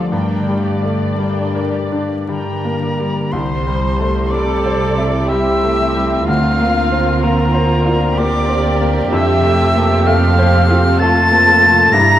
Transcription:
0.00 0.17 D3 soft
0.00 0.15 F3 soft
0.00 0.16 F3 soft
0.00 0.14 G3 soft
0.00 0.10 A3 medium
0.00 0.15 D4 soft
0.00 0.89 D4 soft
0.00 0.11 F4 soft
0.00 0.16 F4 soft
0.00 0.11 A4 soft
0.00 0.14 A4 soft
0.00 0.16 A4 soft
0.00 0.11 D5 medium
0.00 0.12 F5 soft
0.11 3.37 G2 soft
0.11 3.29 G2 soft
0.11 1.04 G2 soft
0.11 1.18 A3 medium
0.11 0.60 D4 soft
0.11 0.60 A#4 soft
0.11 2.82 D5 soft
0.11 0.60 G5 soft
0.39 2.27 D3 soft
0.49 1.04 G3 soft
0.63 2.54 G3 soft
0.63 1.17 G4 soft
0.63 1.17 D5 soft
0.83 1.18 A3 soft
0.90 1.42 D4 soft
1.16 2.15 G2 soft
1.16 2.28 G3 soft
1.16 1.77 G3 soft
1.16 1.72 D4 soft
1.16 1.72 A#4 soft
1.16 1.71 A#4 soft
1.16 1.73 G5 soft
1.44 2.01 D4 soft
1.55 2.14 A#4 soft
1.72 2.28 G4 soft
1.72 3.37 A#4 soft
1.72 2.29 D5 soft
1.92 2.50 D4 soft
2.02 3.38 D4 soft
2.28 3.21 G2 soft
2.28 2.81 D3 soft
2.28 2.85 G3 soft
2.28 2.78 D4 soft
2.28 3.29 A#4 soft
2.28 2.78 G5 soft
2.28 3.33 A#5 medium
2.55 3.07 G3 soft
2.65 3.00 A#3 soft
2.81 3.37 D3 soft
2.81 3.33 G4 soft
2.81 3.34 D5 soft
3.00 3.33 G3 soft
3.08 3.82 G3 soft
3.32 6.23 C2 soft
3.32 6.32 C3 soft
3.32 9.09 C4 soft
3.32 6.24 G4 soft
3.32 4.32 C5 medium
3.32 4.31 C5 medium
3.32 4.33 C6 medium
3.58 6.03 C4 soft
3.67 4.19 G3 soft
3.83 5.79 G3 soft
3.99 4.32 A3 soft
4.08 6.32 E4 soft
4.31 4.84 G3 soft
4.31 5.25 A4 medium
4.31 5.54 C5 soft
4.31 5.29 D5 medium
4.31 5.30 D5 medium
4.31 5.30 D6 medium
4.56 5.29 G4 soft
4.66 5.17 C5 soft
4.81 6.32 E5 soft
4.98 5.49 E4 soft
5.07 7.95 C6 soft
5.29 5.83 G3 soft
5.29 6.28 G4 soft
5.29 6.32 G4 soft
5.29 6.28 E5 medium
5.29 6.27 E6 medium
5.55 7.24 C5 soft
5.63 5.96 A3 soft
5.80 6.32 G3 soft
5.96 6.28 G3 soft
6.04 9.94 C4 soft
6.27 9.08 D2 medium
6.27 9.17 D3 medium
6.27 8.14 F4 medium
6.27 9.09 A#4 soft
6.27 7.21 F5 medium
6.27 7.24 F6 medium
6.54 8.90 D4 soft
6.59 7.10 A#3 soft
6.77 8.66 A#3 soft
6.92 7.23 C4 soft
7.01 9.84 F4 soft
7.22 7.74 A#3 soft
7.22 8.18 A#4 medium
7.22 8.43 C5 soft
7.22 8.20 A#5 medium
7.48 8.18 A#4 soft
7.54 8.05 C5 soft
7.73 11.63 D5 soft
7.86 8.37 F4 soft
7.96 10.79 C6 soft
8.18 8.68 A#3 soft
8.18 11.01 G4 medium
8.18 9.17 A#4 soft
8.18 9.12 D5 medium
8.18 9.13 D5 medium
8.18 8.85 D6 medium
8.44 10.07 C5 soft
8.49 8.81 C4 soft
8.68 9.17 A#3 soft
8.81 9.12 A#3 soft
8.91 9.17 D4 soft
9.12 11.90 F2 medium
9.12 11.98 F2 medium
9.12 11.90 C4 medium
9.12 11.94 A4 medium
9.12 10.05 E5 medium
9.12 10.09 E5 medium
9.12 10.08 E6 medium
9.39 11.70 C3 soft
9.43 9.94 A3 soft
9.75 10.07 A#3 soft
9.85 11.99 F4 soft
10.06 10.58 A3 soft
10.06 11.24 C5 medium
10.06 11.00 F5 medium
10.06 11.02 F5 medium
10.06 11.01 F6 medium
10.32 11.01 A4 soft
10.39 10.89 C5 soft
10.55 11.98 F5 medium
10.70 11.20 F4 soft
10.80 11.98 C6 soft
10.99 11.51 A3 medium
10.99 11.92 F4 medium
10.99 11.98 A4 soft
10.99 11.92 A5 medium
10.99 11.94 A6 loud
11.04 11.95 A5 medium
11.26 11.98 C5 medium
11.32 11.63 A#3 soft
11.49 11.98 A3 medium
11.62 11.93 A3 soft
11.71 11.98 C3 soft
11.93 12.19 G2 medium
11.93 12.19 G3 medium
11.93 12.19 E4 medium
11.93 12.19 G4 medium
11.93 12.19 A#5 medium
11.93 12.19 A#5 loud
11.93 12.19 A#6 loud

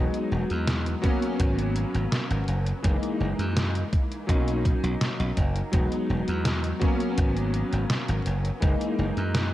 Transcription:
0.00 0.95 F#3 medium
0.00 0.96 G#3 medium
0.00 0.96 B3 medium
0.00 0.97 D#4 medium
0.14 closed hi-hat soft
0.32 0.43 E1 medium
0.50 0.94 E2 medium
0.50 closed hi-hat soft
0.67 snare loud
0.67 closed hi-hat medium
0.86 closed hi-hat soft
1.02 2.76 F#3 medium
1.02 2.77 A#3 medium
1.02 2.77 B3 medium
1.02 2.78 C#4 loud
1.02 kick medium
1.02 closed hi-hat medium
1.22 closed hi-hat soft
1.40 1.84 G#1 medium
1.40 kick loud
1.40 closed hi-hat medium
1.59 closed hi-hat soft
1.76 closed hi-hat medium
1.95 2.06 G#1 medium
1.95 closed hi-hat soft
2.12 snare loud
2.12 closed hi-hat medium
2.30 2.42 G#1 medium
2.30 closed hi-hat soft
2.48 2.72 F#1 medium
2.48 closed hi-hat medium
2.67 closed hi-hat soft
2.83 2.96 F#1 medium
2.83 4.21 E3 medium
2.83 4.21 G#3 medium
2.83 4.22 A#3 medium
2.83 4.23 D#4 medium
2.83 kick loud
2.83 closed hi-hat medium
3.03 closed hi-hat soft
3.20 3.32 F#1 medium
3.39 3.82 F#2 medium
3.39 closed hi-hat soft
3.57 snare loud
3.57 closed hi-hat medium
3.75 closed hi-hat soft
3.93 kick loud
3.93 closed hi-hat medium
4.12 closed hi-hat soft
4.27 4.73 B1 medium
4.27 5.65 F#3 medium
4.27 5.66 A#3 medium
4.27 5.66 C#4 medium
4.27 5.67 D#4 medium
4.27 kick loud
4.27 closed hi-hat medium
4.48 closed hi-hat soft
4.65 kick loud
4.65 closed hi-hat medium
4.83 4.95 B1 medium
4.83 closed hi-hat soft
5.01 snare loud
5.01 closed hi-hat medium
5.20 5.31 B1 medium
5.20 closed hi-hat soft
5.37 5.61 F#1 medium
5.37 kick medium
5.37 closed hi-hat medium
5.56 closed hi-hat soft
5.72 5.85 E1 loud
5.72 6.74 F#3 medium
5.72 6.74 G#3 medium
5.72 6.75 B3 medium
5.72 6.75 D#4 medium
5.72 kick loud
5.72 closed hi-hat medium
5.92 closed hi-hat soft
6.10 6.21 E1 medium
6.28 6.72 E2 medium
6.28 closed hi-hat soft
6.45 snare loud
6.45 closed hi-hat medium
6.64 closed hi-hat soft
6.80 8.54 F#3 medium
6.80 8.55 A#3 medium
6.80 8.55 B3 medium
6.80 8.56 C#4 loud
6.80 kick loud
6.80 closed hi-hat medium
7.00 closed hi-hat soft
7.18 7.62 G#1 medium
7.18 kick loud
7.18 closed hi-hat medium
7.37 closed hi-hat soft
7.54 closed hi-hat medium
7.73 7.84 G#1 medium
7.73 closed hi-hat soft
7.90 snare loud
7.90 closed hi-hat medium
8.08 8.20 G#1 medium
8.08 closed hi-hat soft
8.26 8.50 F#1 medium
8.26 closed hi-hat medium
8.45 closed hi-hat soft
8.60 8.74 F#1 loud
8.60 9.54 E3 medium
8.60 9.54 G#3 medium
8.60 9.54 A#3 medium
8.60 9.54 D#4 medium
8.60 kick loud
8.60 closed hi-hat medium
8.81 closed hi-hat soft
8.99 9.11 F#1 medium
9.17 9.54 F#2 medium
9.17 closed hi-hat soft
9.35 snare loud
9.35 closed hi-hat medium

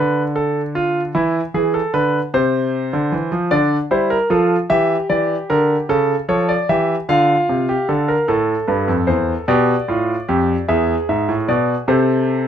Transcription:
0.00 1.11 D3 medium
0.00 0.21 B4 medium
0.36 0.60 A4 medium
0.75 1.00 F4 medium
1.15 1.39 E3 medium
1.15 1.39 E4 medium
1.54 1.79 E3 medium
1.54 1.73 G#4 medium
1.74 1.93 A4 medium
1.94 2.18 D3 medium
1.94 2.18 B4 medium
2.34 2.91 C3 medium
2.34 3.48 C5 medium
2.93 3.12 D3 medium
3.12 3.31 E3 medium
3.32 3.51 F3 medium
3.51 3.76 D3 medium
3.51 3.76 D4 medium
3.51 3.76 D5 medium
3.91 4.15 G3 medium
3.91 4.15 E4 medium
3.91 4.10 C5 medium
4.10 4.30 A#4 medium
4.30 4.55 F3 medium
4.30 4.55 F4 medium
4.30 4.55 A4 medium
4.70 4.95 E3 medium
4.70 5.86 G4 medium
4.70 4.95 E5 medium
5.10 5.34 E3 medium
5.10 5.34 D5 medium
5.50 5.75 D3 medium
5.50 5.74 A#4 medium
5.89 6.14 C#3 medium
5.89 6.14 A4 medium
6.28 6.53 F3 medium
6.28 6.53 A4 medium
6.28 6.48 C#5 medium
6.49 6.68 D5 medium
6.69 6.94 E3 medium
6.69 6.94 G4 medium
6.69 6.94 E5 medium
7.09 7.34 D3 medium
7.09 7.67 F4 medium
7.09 8.25 F5 medium
7.49 7.74 C3 medium
7.69 7.88 G4 medium
7.89 8.14 D3 medium
7.89 8.08 A4 medium
8.08 8.28 A#4 medium
8.28 8.53 A2 medium
8.28 9.45 A4 medium
8.68 8.88 G2 medium
8.68 8.93 B4 medium
8.88 9.08 F2 medium
9.07 9.33 E2 medium
9.07 9.33 C5 medium
9.48 9.73 B2 medium
9.48 9.73 G4 medium
9.48 10.65 D5 medium
9.88 10.14 A2 medium
9.88 10.13 F4 medium
10.28 10.54 F2 medium
10.28 10.54 G4 medium
10.68 10.94 E2 medium
10.68 11.85 G#4 medium
10.68 10.94 E5 medium
11.09 11.29 G#2 medium
11.09 11.34 E5 medium
11.29 11.48 A2 medium
11.48 11.74 B2 medium
11.48 11.73 D5 medium
11.88 12.48 C3 medium
11.88 12.48 A4 medium
11.88 12.47 C5 medium

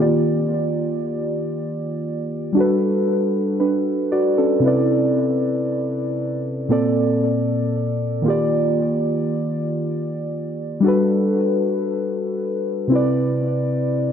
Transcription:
0.00 2.50 D#3 medium
0.00 2.51 A#3 medium
0.00 2.52 F4 medium
0.00 2.53 G4 medium
0.00 2.54 D5 medium
2.53 4.57 G3 medium
2.53 3.57 D4 medium
2.53 3.58 F#4 medium
2.58 3.59 A4 medium
2.58 3.59 B4 medium
3.60 4.09 D4 medium
3.60 4.09 B4 medium
4.12 4.37 F#4 medium
4.12 4.36 D5 medium
4.38 4.87 C#4 medium
4.38 4.87 A4 medium
4.60 6.64 C3 medium
4.60 6.65 C4 medium
4.60 6.66 E4 medium
4.66 6.67 B4 medium
4.66 6.68 D5 medium
6.68 8.24 A#2 medium
6.68 8.22 A#3 medium
6.68 8.25 C4 medium
6.68 8.26 A4 medium
6.68 8.26 D5 medium
8.22 10.78 D#3 medium
8.22 10.79 A#3 medium
8.22 10.80 F4 medium
8.28 10.81 G4 medium
8.28 10.82 D5 medium
10.80 12.85 G3 medium
10.80 12.86 D4 medium
10.80 12.87 F#4 medium
10.86 12.88 A4 medium
10.86 12.89 B4 medium
12.88 14.12 C3 medium
12.88 14.12 C4 medium
12.88 14.12 E4 medium
12.93 14.12 B4 medium
12.93 14.12 D5 medium

